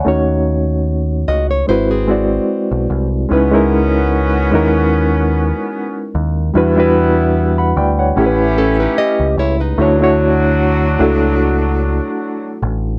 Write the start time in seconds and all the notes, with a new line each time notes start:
Already playing: F#5
0.05 D#2 A3 C#4 D#4 F#4 C#5
1.28 C#2 F#4 D#5
1.51 C#5
1.67 G#1 G#3 C4 E4 F#4 C5
1.71 B4
1.91 C4 G#4
2.07 G#3 C4 E4 F#4 D5
2.71 B1
2.90 C2
3.29 C#2 G#3 B3 C#4 D#4 E4 F#4
3.33 B4
3.51 G#3 C#4 D#4 E4 A#4
4.51 D#2 G#3 C#4 D#4 E4 A#4
6.15 D#2
6.54 E2 G3 B3 D4 E4 F#4 B4
6.76 G3 D4 E4 F#4 B4
7.58 F#5 B5
7.76 D2 D5 G5
7.99 C#5 F#5
8.16 A1 A3 C#4 E4 G4 A4
8.26 B4
8.58 C#4 A4
8.80 D#4 B4
8.98 G4 D#5
9.20 C#2
9.37 C#2 E4 C#5
9.60 D#4 B4
9.78 D2 F#3 A3 D4 E4 F#4 C#5
10.00 A3 D4 E4 F#4 C#5
10.99 C#2 A3 D4 E4 F#4 A4
12.63 A1